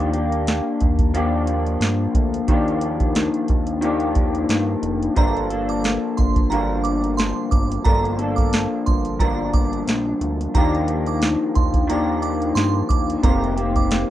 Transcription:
Already playing: analog synth bass D#2, clean electric guitar D#3 F3 A#3 D4 G4
0.00 closed hi-hat
0.13 clean electric guitar A#3 D4 G4, closed hi-hat
0.32 closed hi-hat
0.47 snare, closed hi-hat
0.81 analog synth bass D#2, kick, closed hi-hat
0.99 kick, closed hi-hat
1.14 clean electric guitar F3 A#3 D4 G4, closed hi-hat
1.47 closed hi-hat
1.67 closed hi-hat
1.80 analog synth bass G2, snare, closed hi-hat
2.15 analog synth bass D2, kick, closed hi-hat
2.34 closed hi-hat
2.48 analog synth bass D#2, clean electric guitar D#3 F3 A#3 D4 G4, kick, closed hi-hat
2.68 closed hi-hat
2.81 closed hi-hat
3.00 kick, closed hi-hat
3.15 snare, closed hi-hat
3.34 closed hi-hat
3.48 analog synth bass D#2, kick, closed hi-hat
3.67 closed hi-hat
3.81 clean electric guitar D#3 F3 A#3 D4 G4, closed hi-hat
4.00 closed hi-hat
4.15 kick, closed hi-hat
4.35 closed hi-hat
4.49 analog synth bass G2, snare, closed hi-hat
4.83 analog synth bass F1, closed hi-hat
5.03 closed hi-hat
5.16 analog synth bass G1, clean electric guitar G2 D3 F3 A#3 D4 A4, synth bell A#5, kick, closed hi-hat
5.37 closed hi-hat
5.50 clean electric guitar F3 A#3 D4 A4, closed hi-hat
5.69 synth bell D6, closed hi-hat
5.84 snare, closed hi-hat
6.17 analog synth bass G1, synth bell C6, kick, closed hi-hat
6.36 kick, closed hi-hat
6.50 clean electric guitar G2 D3 F3 A#3 D4, synth bell A#5, closed hi-hat
6.84 synth bell D6, closed hi-hat
7.04 closed hi-hat
7.17 synth bell C6, snare, closed hi-hat
7.51 analog synth bass G1, synth bell D6, kick, closed hi-hat
7.72 closed hi-hat
7.84 analog synth bass G1, clean electric guitar G2 D3 F3 A#3 D4 A4, synth bell A#5, kick, closed hi-hat
8.05 closed hi-hat
8.19 clean electric guitar F3 A#3 D4 A4, closed hi-hat
8.36 synth bell D6, kick, closed hi-hat
8.53 snare, closed hi-hat
8.86 analog synth bass G1, synth bell C6, kick, closed hi-hat
9.05 closed hi-hat
9.19 clean electric guitar G2 D3 F3 A#3 D4, synth bell A#5, kick, closed hi-hat
9.54 synth bell D6, kick, closed hi-hat
9.73 closed hi-hat
9.87 analog synth bass A#1, snare, closed hi-hat
10.21 analog synth bass D2, closed hi-hat
10.41 closed hi-hat
10.54 analog synth bass D#2, clean electric guitar D#3 F3 A#3 D4 G4, synth bell A#5, kick, closed hi-hat
10.75 closed hi-hat
10.88 closed hi-hat
11.06 synth bell D6, closed hi-hat
11.22 snare, closed hi-hat
11.55 analog synth bass D#2, synth bell C6, kick, closed hi-hat
11.74 kick, closed hi-hat
11.87 clean electric guitar D#3 F3 A#3 D4 G4, synth bell A#5, closed hi-hat
12.22 synth bell D6, closed hi-hat
12.42 closed hi-hat
12.55 analog synth bass G2, synth bell C6, snare, closed hi-hat
12.89 analog synth bass D#2, synth bell D6, kick, closed hi-hat
13.10 closed hi-hat
13.23 analog synth bass F1, clean electric guitar F2 C3 D#3 A#3 C4 G4, synth bell A#5, kick, closed hi-hat
13.44 closed hi-hat
13.56 clean electric guitar D#3 A#3 C4 G4, closed hi-hat
13.76 synth bell D6, kick, closed hi-hat
13.91 snare, closed hi-hat

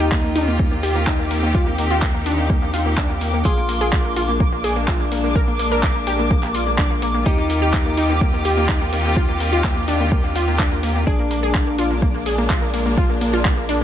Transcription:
Already playing: analog synth bass D#2, string section D#3 C4 F4 G4, clean electric guitar D#4, synth texture D6
0.00 synth pluck G4, shaker
0.12 synth pluck A#3, kick, clap, shaker
0.24 synth pluck A#3
0.35 synth pluck D#4, open hi-hat, shaker
0.48 synth pluck A#3, shaker
0.59 synth pluck A#3, kick, shaker
0.71 synth pluck A#3, shaker
0.83 synth pluck G4, open hi-hat, shaker
0.95 synth pluck A#3, shaker
1.07 synth pluck D#4, kick, clap, shaker
1.19 synth pluck A#3
1.30 synth pluck A#3, open hi-hat, shaker
1.43 synth pluck A#3, shaker
1.55 string section D#4, synth pluck F4, kick, shaker
1.67 synth pluck A#3
1.78 synth pluck A#3, open hi-hat, shaker
1.91 synth pluck F4, shaker
2.02 synth pluck A#3, kick, clap, shaker
2.14 synth pluck A#3
2.26 synth pluck D4, open hi-hat, shaker
2.38 synth pluck A#3, shaker
2.49 synth pluck A#3, kick, shaker
2.62 synth pluck A#3, shaker
2.73 synth pluck F4, open hi-hat, shaker
2.85 synth pluck A#3, shaker
2.97 synth pluck D4, kick, clap, shaker
3.10 synth pluck A#3
3.21 synth pluck A#3, open hi-hat, shaker
3.33 synth pluck A#3, shaker
3.45 analog synth bass A#1, string section G#3 A#3 D4, clean electric guitar F4, synth pluck G#4, kick, shaker
3.57 synth pluck A#3
3.69 synth pluck A#3, open hi-hat, shaker
3.81 synth pluck G#4, shaker
3.93 synth pluck A#3, kick, clap, shaker
4.05 synth pluck A#3
4.16 synth pluck F4, open hi-hat, shaker
4.29 synth pluck A#3, shaker
4.40 synth pluck A#3, kick, shaker
4.52 synth pluck A#3, shaker
4.64 synth pluck G#4, open hi-hat, shaker
4.75 synth pluck A#3, shaker
4.87 synth pluck F4, kick, clap, shaker
5.00 synth pluck A#3
5.11 synth pluck A#3, open hi-hat, shaker
5.23 synth pluck A#3, shaker
5.36 synth pluck A#4, kick, shaker
5.48 synth pluck A#3
5.59 synth pluck A#3, open hi-hat, shaker
5.72 synth pluck A#4, shaker
5.83 synth pluck A#3, kick, clap, shaker
5.95 synth pluck A#3, shaker
6.07 synth pluck G4, open hi-hat, shaker
6.19 synth pluck A#3, shaker
6.31 synth pluck A#3, kick, shaker
6.43 synth pluck A#3, clap, shaker
6.54 synth pluck F4, open hi-hat, shaker
6.67 synth pluck A#3, shaker
6.78 synth pluck D4, kick, clap, shaker
6.90 synth pluck A#3, shaker
7.02 synth pluck A#3, open hi-hat, shaker
7.14 synth pluck A#3, shaker
7.26 analog synth bass D#2, string section D#3 C4 F4 G4, clean electric guitar D#4, synth pluck G4, kick, shaker
7.38 synth pluck A#3
7.50 synth pluck A#3, open hi-hat, shaker
7.62 synth pluck G4, shaker
7.74 synth pluck A#3, kick, clap, shaker
7.86 synth pluck A#3
7.97 synth pluck D#4, open hi-hat, shaker
8.10 synth pluck A#3, shaker
8.21 synth pluck A#3, kick, shaker
8.33 synth pluck A#3, shaker
8.45 synth pluck G4, open hi-hat, shaker
8.57 synth pluck A#3, shaker
8.68 synth pluck D#4, kick, clap, shaker
8.81 synth pluck A#3
8.93 synth pluck A#3, open hi-hat, shaker
9.05 synth pluck A#3, shaker
9.16 synth pluck F4, kick, shaker
9.29 synth pluck A#3
9.40 synth pluck A#3, open hi-hat, shaker
9.53 synth pluck F4, shaker
9.64 synth pluck A#3, kick, clap, shaker
9.76 synth pluck A#3
9.88 synth pluck D4, open hi-hat, shaker
10.00 synth pluck A#3, shaker
10.12 synth pluck A#3, kick, shaker
10.24 synth pluck A#3, shaker
10.35 synth pluck F4, open hi-hat, shaker
10.48 synth pluck A#3, shaker
10.59 synth pluck D4, kick, clap, shaker
10.72 synth pluck A#3
10.83 synth pluck A#3, open hi-hat, shaker
10.95 synth pluck A#3, shaker
11.07 analog synth bass A#1, string section G#3 A#3 D4, clean electric guitar D4, synth pluck G#4, kick, shaker
11.19 synth pluck A#3
11.31 synth pluck A#3, open hi-hat, shaker
11.43 synth pluck G#4, shaker
11.55 synth pluck A#3, kick, clap, shaker
11.67 synth pluck A#3
11.78 synth pluck F4, open hi-hat, shaker
11.91 synth pluck A#3, shaker
12.02 synth pluck A#3, kick, shaker
12.14 synth pluck A#3, shaker
12.26 synth pluck G#4, open hi-hat, shaker
12.38 synth pluck A#3, shaker
12.50 synth pluck F4, kick, clap, shaker
12.62 synth pluck A#3
12.73 synth pluck A#3, open hi-hat, shaker
12.86 synth pluck A#3, shaker
12.97 synth pluck F4, kick, shaker
13.10 synth pluck A#3, shaker
13.21 synth pluck A#3, open hi-hat, shaker
13.33 synth pluck F4, shaker
13.45 synth pluck A#3, kick, clap, shaker
13.57 synth pluck A#3, shaker
13.69 synth pluck D4, open hi-hat, shaker

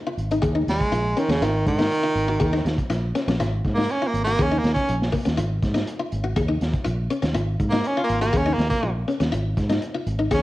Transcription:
0.07 qanun F4
0.17 fingered electric bass G#1, closed hi-hat
0.31 qanun D#4, closed hi-hat
0.42 fingered electric bass D#2, qanun G#4, kick, closed hi-hat
0.55 qanun D#4
0.67 fingered electric bass D#2, baritone saxophone G#3, snare, closed hi-hat
0.80 kick, closed hi-hat
0.92 fingered electric bass A#1, qanun F4, closed hi-hat
1.17 baritone saxophone D#3, qanun C#4, closed hi-hat
1.28 fingered electric bass D#2, baritone saxophone C#3, qanun C#4, snare, closed hi-hat
1.42 fingered electric bass G#1, baritone saxophone D#3, qanun F4, snare, closed hi-hat
1.66 fingered electric bass G#2, baritone saxophone D#3, kick, closed hi-hat
1.79 qanun D#4, snare, closed hi-hat
1.92 closed hi-hat
2.03 qanun F4
2.15 fingered electric bass G#1, closed hi-hat
2.28 qanun F#4
2.40 fingered electric bass D#2, qanun G#4, kick, closed hi-hat
2.53 qanun D#4, snare
2.65 fingered electric bass D#2, snare, closed hi-hat
2.78 kick, closed hi-hat
2.90 fingered electric bass A#1, qanun F4, snare, closed hi-hat
3.15 qanun C#4, snare, closed hi-hat
3.27 fingered electric bass A#1, qanun C#4, snare, closed hi-hat
3.40 fingered electric bass G#1, qanun F4, snare, closed hi-hat
3.65 fingered electric bass G#2, kick, snare, closed hi-hat
3.75 baritone saxophone A#3, qanun D#4, snare
3.89 baritone saxophone C#4, closed hi-hat
4.02 qanun F4
4.07 baritone saxophone A#3
4.14 fingered electric bass G#1, closed hi-hat
4.24 baritone saxophone A#3, qanun F#4, closed hi-hat
4.39 fingered electric bass D#2, baritone saxophone C#4, qanun G#4, kick, closed hi-hat
4.51 qanun D#4
4.59 baritone saxophone A#3
4.64 fingered electric bass D#2, snare, closed hi-hat
4.74 baritone saxophone C#4, kick, closed hi-hat
4.89 fingered electric bass A#1, closed hi-hat
5.02 snare
5.12 qanun A#3, kick, open hi-hat
5.25 fingered electric bass D#2, qanun C#4, snare, closed hi-hat
5.37 fingered electric bass G#1, qanun F4, closed hi-hat
5.62 fingered electric bass G#2, kick, snare, closed hi-hat
5.74 qanun D#4, snare, closed hi-hat
5.87 closed hi-hat
5.99 qanun F4
6.12 fingered electric bass G#1, closed hi-hat
6.24 qanun F#4
6.36 fingered electric bass D#2, qanun G#4, kick, closed hi-hat
6.48 qanun D#4
6.61 fingered electric bass D#2, snare, closed hi-hat
6.73 kick, closed hi-hat
6.84 fingered electric bass A#1, qanun F4, closed hi-hat
7.10 qanun C#4, closed hi-hat
7.22 fingered electric bass D#2, qanun C#4, snare, closed hi-hat
7.34 fingered electric bass G#1, qanun F4, closed hi-hat
7.60 fingered electric bass G#2, kick, closed hi-hat
7.70 baritone saxophone A#3, qanun D#4, snare
7.84 baritone saxophone C#4, closed hi-hat
7.97 qanun F4
8.04 baritone saxophone A#3
8.09 fingered electric bass G#1, closed hi-hat
8.21 baritone saxophone A#3, qanun F#4, closed hi-hat
8.33 fingered electric bass D#2, qanun G#4, kick, closed hi-hat
8.37 baritone saxophone C#4
8.46 qanun D#4
8.53 baritone saxophone A#3
8.58 fingered electric bass D#2, snare, closed hi-hat
8.70 baritone saxophone A#3, kick, closed hi-hat
8.83 fingered electric bass A#1, qanun F4, closed hi-hat
9.08 qanun C#4, closed hi-hat
9.20 fingered electric bass D#2, qanun C#4, snare, closed hi-hat
9.32 fingered electric bass G#1, qanun F4, closed hi-hat
9.57 fingered electric bass G#2, kick, snare, closed hi-hat
9.69 qanun D#4, snare, closed hi-hat
9.82 closed hi-hat
9.94 qanun F4
10.06 fingered electric bass G#1, closed hi-hat
10.19 qanun D#4
10.31 fingered electric bass D#2, baritone saxophone C#4, qanun G#4, kick, snare, closed hi-hat

